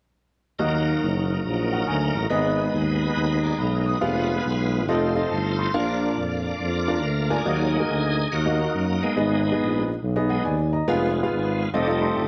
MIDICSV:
0, 0, Header, 1, 4, 480
1, 0, Start_track
1, 0, Key_signature, -6, "minor"
1, 0, Tempo, 428878
1, 659, Time_signature, 4, 2, 24, 8
1, 13743, End_track
2, 0, Start_track
2, 0, Title_t, "Upright piano"
2, 0, Program_c, 0, 0
2, 663, Note_on_c, 0, 75, 85
2, 664, Note_on_c, 0, 51, 73
2, 666, Note_on_c, 0, 58, 80
2, 666, Note_on_c, 0, 66, 73
2, 669, Note_on_c, 0, 63, 73
2, 1158, Note_off_c, 0, 75, 0
2, 1159, Note_off_c, 0, 58, 0
2, 1159, Note_off_c, 0, 66, 0
2, 1161, Note_off_c, 0, 63, 0
2, 1406, Note_off_c, 0, 51, 0
2, 1931, Note_on_c, 0, 78, 58
2, 2093, Note_off_c, 0, 78, 0
2, 2098, Note_on_c, 0, 80, 61
2, 2393, Note_off_c, 0, 80, 0
2, 2413, Note_on_c, 0, 82, 59
2, 2578, Note_on_c, 0, 44, 69
2, 2578, Note_on_c, 0, 59, 77
2, 2578, Note_on_c, 0, 75, 92
2, 2579, Note_on_c, 0, 68, 73
2, 2582, Note_on_c, 0, 63, 78
2, 2868, Note_off_c, 0, 82, 0
2, 3076, Note_off_c, 0, 59, 0
2, 3076, Note_off_c, 0, 68, 0
2, 3076, Note_off_c, 0, 75, 0
2, 3078, Note_off_c, 0, 63, 0
2, 3324, Note_off_c, 0, 44, 0
2, 3842, Note_on_c, 0, 82, 57
2, 4009, Note_off_c, 0, 82, 0
2, 4014, Note_on_c, 0, 83, 64
2, 4311, Note_off_c, 0, 83, 0
2, 4321, Note_on_c, 0, 87, 60
2, 4490, Note_on_c, 0, 65, 79
2, 4492, Note_on_c, 0, 68, 70
2, 4493, Note_on_c, 0, 59, 83
2, 4494, Note_on_c, 0, 77, 87
2, 4781, Note_off_c, 0, 87, 0
2, 4992, Note_off_c, 0, 65, 0
2, 4994, Note_off_c, 0, 59, 0
2, 4994, Note_off_c, 0, 68, 0
2, 4995, Note_off_c, 0, 77, 0
2, 5469, Note_on_c, 0, 65, 75
2, 5469, Note_on_c, 0, 75, 91
2, 5470, Note_on_c, 0, 69, 73
2, 5471, Note_on_c, 0, 60, 80
2, 5712, Note_off_c, 0, 65, 0
2, 5713, Note_off_c, 0, 69, 0
2, 5713, Note_off_c, 0, 75, 0
2, 5714, Note_off_c, 0, 60, 0
2, 5767, Note_on_c, 0, 65, 58
2, 5768, Note_on_c, 0, 75, 73
2, 5769, Note_on_c, 0, 60, 67
2, 5769, Note_on_c, 0, 69, 62
2, 5944, Note_on_c, 0, 81, 64
2, 5948, Note_off_c, 0, 65, 0
2, 5949, Note_off_c, 0, 69, 0
2, 5949, Note_off_c, 0, 75, 0
2, 5950, Note_off_c, 0, 60, 0
2, 6236, Note_off_c, 0, 81, 0
2, 6255, Note_on_c, 0, 84, 57
2, 6427, Note_on_c, 0, 62, 81
2, 6428, Note_on_c, 0, 77, 90
2, 6429, Note_on_c, 0, 65, 72
2, 6429, Note_on_c, 0, 70, 78
2, 6432, Note_on_c, 0, 46, 74
2, 6709, Note_off_c, 0, 84, 0
2, 6921, Note_off_c, 0, 62, 0
2, 6921, Note_off_c, 0, 77, 0
2, 6922, Note_off_c, 0, 65, 0
2, 6922, Note_off_c, 0, 70, 0
2, 7171, Note_off_c, 0, 46, 0
2, 7699, Note_on_c, 0, 74, 68
2, 7700, Note_on_c, 0, 62, 62
2, 7700, Note_on_c, 0, 65, 58
2, 7704, Note_on_c, 0, 70, 60
2, 7874, Note_off_c, 0, 74, 0
2, 7875, Note_off_c, 0, 62, 0
2, 7875, Note_off_c, 0, 65, 0
2, 7877, Note_off_c, 0, 70, 0
2, 8173, Note_on_c, 0, 65, 71
2, 8175, Note_on_c, 0, 62, 69
2, 8175, Note_on_c, 0, 70, 63
2, 8177, Note_on_c, 0, 80, 79
2, 8260, Note_off_c, 0, 62, 0
2, 8260, Note_off_c, 0, 65, 0
2, 8261, Note_off_c, 0, 70, 0
2, 8262, Note_off_c, 0, 80, 0
2, 8340, Note_on_c, 0, 75, 80
2, 8342, Note_on_c, 0, 58, 69
2, 8343, Note_on_c, 0, 51, 58
2, 8343, Note_on_c, 0, 66, 65
2, 8346, Note_on_c, 0, 63, 64
2, 8578, Note_off_c, 0, 75, 0
2, 8579, Note_off_c, 0, 58, 0
2, 8579, Note_off_c, 0, 66, 0
2, 8581, Note_off_c, 0, 63, 0
2, 8729, Note_on_c, 0, 70, 72
2, 8730, Note_on_c, 0, 66, 61
2, 8734, Note_on_c, 0, 58, 65
2, 8734, Note_on_c, 0, 63, 60
2, 9085, Note_off_c, 0, 51, 0
2, 9133, Note_off_c, 0, 66, 0
2, 9133, Note_off_c, 0, 70, 0
2, 9136, Note_off_c, 0, 58, 0
2, 9136, Note_off_c, 0, 63, 0
2, 9463, Note_on_c, 0, 63, 61
2, 9466, Note_on_c, 0, 58, 65
2, 9466, Note_on_c, 0, 75, 76
2, 9467, Note_on_c, 0, 66, 62
2, 9876, Note_off_c, 0, 63, 0
2, 9877, Note_off_c, 0, 58, 0
2, 9877, Note_off_c, 0, 75, 0
2, 9878, Note_off_c, 0, 66, 0
2, 10257, Note_on_c, 0, 68, 65
2, 10258, Note_on_c, 0, 75, 82
2, 10259, Note_on_c, 0, 63, 65
2, 10261, Note_on_c, 0, 59, 73
2, 10265, Note_on_c, 0, 44, 60
2, 10496, Note_off_c, 0, 63, 0
2, 10496, Note_off_c, 0, 68, 0
2, 10496, Note_off_c, 0, 75, 0
2, 10497, Note_off_c, 0, 59, 0
2, 10652, Note_on_c, 0, 68, 73
2, 10653, Note_on_c, 0, 59, 75
2, 10654, Note_on_c, 0, 63, 70
2, 10655, Note_on_c, 0, 75, 84
2, 11005, Note_off_c, 0, 44, 0
2, 11053, Note_off_c, 0, 68, 0
2, 11054, Note_off_c, 0, 59, 0
2, 11054, Note_off_c, 0, 63, 0
2, 11055, Note_off_c, 0, 75, 0
2, 11368, Note_on_c, 0, 68, 74
2, 11371, Note_on_c, 0, 59, 79
2, 11371, Note_on_c, 0, 75, 89
2, 11374, Note_on_c, 0, 63, 75
2, 11525, Note_on_c, 0, 78, 61
2, 11685, Note_off_c, 0, 78, 0
2, 11692, Note_on_c, 0, 74, 65
2, 11696, Note_on_c, 0, 80, 69
2, 11697, Note_off_c, 0, 75, 0
2, 11787, Note_off_c, 0, 68, 0
2, 11788, Note_off_c, 0, 59, 0
2, 11789, Note_off_c, 0, 63, 0
2, 11983, Note_off_c, 0, 80, 0
2, 11987, Note_off_c, 0, 74, 0
2, 12006, Note_on_c, 0, 75, 65
2, 12007, Note_on_c, 0, 82, 63
2, 12166, Note_off_c, 0, 82, 0
2, 12175, Note_on_c, 0, 59, 87
2, 12175, Note_on_c, 0, 65, 76
2, 12175, Note_on_c, 0, 77, 99
2, 12178, Note_on_c, 0, 68, 80
2, 12413, Note_off_c, 0, 59, 0
2, 12413, Note_off_c, 0, 65, 0
2, 12413, Note_off_c, 0, 77, 0
2, 12414, Note_off_c, 0, 68, 0
2, 12461, Note_off_c, 0, 75, 0
2, 12568, Note_on_c, 0, 65, 74
2, 12570, Note_on_c, 0, 68, 68
2, 12571, Note_on_c, 0, 59, 77
2, 12572, Note_on_c, 0, 77, 85
2, 12969, Note_off_c, 0, 65, 0
2, 12970, Note_off_c, 0, 68, 0
2, 12971, Note_off_c, 0, 59, 0
2, 12971, Note_off_c, 0, 77, 0
2, 13136, Note_on_c, 0, 65, 74
2, 13137, Note_on_c, 0, 60, 82
2, 13137, Note_on_c, 0, 75, 89
2, 13138, Note_on_c, 0, 69, 76
2, 13258, Note_off_c, 0, 65, 0
2, 13259, Note_off_c, 0, 60, 0
2, 13259, Note_off_c, 0, 75, 0
2, 13260, Note_off_c, 0, 69, 0
2, 13289, Note_on_c, 0, 75, 86
2, 13294, Note_on_c, 0, 69, 76
2, 13295, Note_on_c, 0, 60, 77
2, 13295, Note_on_c, 0, 65, 76
2, 13447, Note_on_c, 0, 84, 57
2, 13608, Note_off_c, 0, 84, 0
2, 13611, Note_on_c, 0, 81, 61
2, 13705, Note_off_c, 0, 75, 0
2, 13708, Note_off_c, 0, 60, 0
2, 13708, Note_off_c, 0, 65, 0
2, 13708, Note_off_c, 0, 69, 0
2, 13743, Note_off_c, 0, 81, 0
2, 13743, End_track
3, 0, Start_track
3, 0, Title_t, "Tonewheel organ"
3, 0, Program_c, 1, 16
3, 657, Note_on_c, 1, 58, 65
3, 660, Note_on_c, 1, 54, 71
3, 660, Note_on_c, 1, 63, 66
3, 660, Note_on_c, 1, 70, 79
3, 2541, Note_off_c, 1, 58, 0
3, 2543, Note_off_c, 1, 54, 0
3, 2543, Note_off_c, 1, 63, 0
3, 2543, Note_off_c, 1, 70, 0
3, 2570, Note_on_c, 1, 59, 66
3, 2570, Note_on_c, 1, 71, 81
3, 2571, Note_on_c, 1, 56, 72
3, 2573, Note_on_c, 1, 63, 64
3, 3819, Note_off_c, 1, 71, 0
3, 3846, Note_on_c, 1, 74, 58
3, 3862, Note_on_c, 1, 68, 48
3, 4011, Note_off_c, 1, 74, 0
3, 4019, Note_off_c, 1, 68, 0
3, 4025, Note_on_c, 1, 75, 72
3, 4033, Note_on_c, 1, 70, 59
3, 4317, Note_off_c, 1, 75, 0
3, 4321, Note_off_c, 1, 70, 0
3, 4337, Note_on_c, 1, 71, 55
3, 4342, Note_on_c, 1, 66, 51
3, 4458, Note_off_c, 1, 59, 0
3, 4459, Note_off_c, 1, 56, 0
3, 4460, Note_off_c, 1, 63, 0
3, 4478, Note_off_c, 1, 71, 0
3, 4491, Note_on_c, 1, 71, 84
3, 4498, Note_on_c, 1, 55, 61
3, 4499, Note_on_c, 1, 59, 69
3, 4499, Note_on_c, 1, 65, 70
3, 4549, Note_on_c, 1, 56, 70
3, 4574, Note_off_c, 1, 55, 0
3, 4793, Note_off_c, 1, 66, 0
3, 5438, Note_off_c, 1, 71, 0
3, 5442, Note_off_c, 1, 59, 0
3, 5442, Note_off_c, 1, 65, 0
3, 5464, Note_on_c, 1, 65, 62
3, 5465, Note_on_c, 1, 63, 63
3, 5467, Note_off_c, 1, 56, 0
3, 5467, Note_on_c, 1, 71, 60
3, 5468, Note_on_c, 1, 57, 70
3, 5519, Note_on_c, 1, 72, 76
3, 5539, Note_off_c, 1, 71, 0
3, 6404, Note_off_c, 1, 65, 0
3, 6405, Note_off_c, 1, 63, 0
3, 6406, Note_off_c, 1, 57, 0
3, 6425, Note_on_c, 1, 65, 61
3, 6425, Note_on_c, 1, 73, 64
3, 6426, Note_on_c, 1, 58, 73
3, 6426, Note_on_c, 1, 62, 66
3, 6432, Note_off_c, 1, 72, 0
3, 6485, Note_on_c, 1, 74, 76
3, 6498, Note_off_c, 1, 73, 0
3, 7835, Note_off_c, 1, 65, 0
3, 7865, Note_off_c, 1, 74, 0
3, 7865, Note_on_c, 1, 70, 66
3, 7874, Note_on_c, 1, 65, 54
3, 8156, Note_off_c, 1, 70, 0
3, 8161, Note_off_c, 1, 65, 0
3, 8168, Note_on_c, 1, 74, 60
3, 8181, Note_on_c, 1, 68, 48
3, 8189, Note_on_c, 1, 70, 87
3, 8305, Note_off_c, 1, 58, 0
3, 8305, Note_off_c, 1, 62, 0
3, 8347, Note_on_c, 1, 54, 52
3, 8350, Note_on_c, 1, 58, 49
3, 8353, Note_off_c, 1, 68, 0
3, 8356, Note_off_c, 1, 70, 0
3, 8359, Note_on_c, 1, 63, 68
3, 8367, Note_on_c, 1, 68, 100
3, 8625, Note_off_c, 1, 74, 0
3, 8703, Note_off_c, 1, 54, 0
3, 8704, Note_off_c, 1, 58, 0
3, 9268, Note_off_c, 1, 63, 0
3, 9310, Note_on_c, 1, 63, 62
3, 9313, Note_on_c, 1, 66, 84
3, 9320, Note_on_c, 1, 58, 63
3, 9342, Note_off_c, 1, 68, 0
3, 9606, Note_off_c, 1, 58, 0
3, 9606, Note_off_c, 1, 63, 0
3, 9608, Note_off_c, 1, 66, 0
3, 9619, Note_on_c, 1, 58, 62
3, 9619, Note_on_c, 1, 63, 62
3, 9621, Note_on_c, 1, 66, 86
3, 10080, Note_off_c, 1, 63, 0
3, 10093, Note_on_c, 1, 63, 81
3, 10106, Note_on_c, 1, 56, 50
3, 10106, Note_on_c, 1, 59, 47
3, 10109, Note_off_c, 1, 66, 0
3, 10220, Note_off_c, 1, 58, 0
3, 10253, Note_off_c, 1, 56, 0
3, 10266, Note_off_c, 1, 59, 0
3, 10267, Note_on_c, 1, 56, 51
3, 10269, Note_off_c, 1, 63, 0
3, 10280, Note_on_c, 1, 59, 49
3, 10282, Note_on_c, 1, 63, 57
3, 11011, Note_off_c, 1, 56, 0
3, 11018, Note_off_c, 1, 59, 0
3, 11020, Note_off_c, 1, 63, 0
3, 11522, Note_on_c, 1, 56, 43
3, 11527, Note_on_c, 1, 59, 42
3, 11532, Note_on_c, 1, 63, 52
3, 11678, Note_off_c, 1, 56, 0
3, 11681, Note_off_c, 1, 59, 0
3, 11683, Note_off_c, 1, 63, 0
3, 12176, Note_on_c, 1, 56, 56
3, 12183, Note_on_c, 1, 59, 53
3, 12188, Note_on_c, 1, 65, 61
3, 13090, Note_off_c, 1, 56, 0
3, 13093, Note_off_c, 1, 59, 0
3, 13096, Note_off_c, 1, 65, 0
3, 13142, Note_on_c, 1, 57, 43
3, 13143, Note_on_c, 1, 55, 53
3, 13154, Note_on_c, 1, 63, 53
3, 13743, Note_off_c, 1, 55, 0
3, 13743, Note_off_c, 1, 57, 0
3, 13743, Note_off_c, 1, 63, 0
3, 13743, End_track
4, 0, Start_track
4, 0, Title_t, "Tuba"
4, 0, Program_c, 2, 58
4, 665, Note_on_c, 2, 39, 90
4, 1071, Note_off_c, 2, 39, 0
4, 1144, Note_on_c, 2, 30, 87
4, 1550, Note_off_c, 2, 30, 0
4, 1624, Note_on_c, 2, 34, 92
4, 2031, Note_off_c, 2, 34, 0
4, 2098, Note_on_c, 2, 38, 80
4, 2361, Note_off_c, 2, 38, 0
4, 2408, Note_on_c, 2, 33, 83
4, 2555, Note_off_c, 2, 33, 0
4, 2579, Note_on_c, 2, 32, 98
4, 2988, Note_off_c, 2, 32, 0
4, 3058, Note_on_c, 2, 39, 83
4, 3468, Note_off_c, 2, 39, 0
4, 3539, Note_on_c, 2, 39, 92
4, 3948, Note_off_c, 2, 39, 0
4, 4016, Note_on_c, 2, 35, 90
4, 4427, Note_off_c, 2, 35, 0
4, 4502, Note_on_c, 2, 29, 101
4, 4910, Note_off_c, 2, 29, 0
4, 4987, Note_on_c, 2, 35, 90
4, 5469, Note_on_c, 2, 29, 106
4, 5486, Note_off_c, 2, 35, 0
4, 5874, Note_off_c, 2, 29, 0
4, 5948, Note_on_c, 2, 31, 82
4, 6354, Note_off_c, 2, 31, 0
4, 6430, Note_on_c, 2, 34, 90
4, 6835, Note_off_c, 2, 34, 0
4, 6913, Note_on_c, 2, 41, 74
4, 7316, Note_off_c, 2, 41, 0
4, 7389, Note_on_c, 2, 41, 91
4, 7867, Note_on_c, 2, 38, 86
4, 7883, Note_off_c, 2, 41, 0
4, 8272, Note_off_c, 2, 38, 0
4, 8347, Note_on_c, 2, 39, 98
4, 8752, Note_off_c, 2, 39, 0
4, 8832, Note_on_c, 2, 38, 79
4, 9235, Note_off_c, 2, 38, 0
4, 9313, Note_on_c, 2, 39, 86
4, 9715, Note_off_c, 2, 39, 0
4, 9791, Note_on_c, 2, 42, 87
4, 10094, Note_off_c, 2, 42, 0
4, 10265, Note_on_c, 2, 32, 100
4, 10670, Note_off_c, 2, 32, 0
4, 10746, Note_on_c, 2, 34, 85
4, 11151, Note_off_c, 2, 34, 0
4, 11220, Note_on_c, 2, 35, 97
4, 11627, Note_off_c, 2, 35, 0
4, 11702, Note_on_c, 2, 39, 89
4, 12107, Note_off_c, 2, 39, 0
4, 12182, Note_on_c, 2, 29, 93
4, 12587, Note_off_c, 2, 29, 0
4, 12658, Note_on_c, 2, 32, 81
4, 13064, Note_off_c, 2, 32, 0
4, 13137, Note_on_c, 2, 29, 96
4, 13543, Note_off_c, 2, 29, 0
4, 13620, Note_on_c, 2, 31, 81
4, 13743, Note_off_c, 2, 31, 0
4, 13743, End_track
0, 0, End_of_file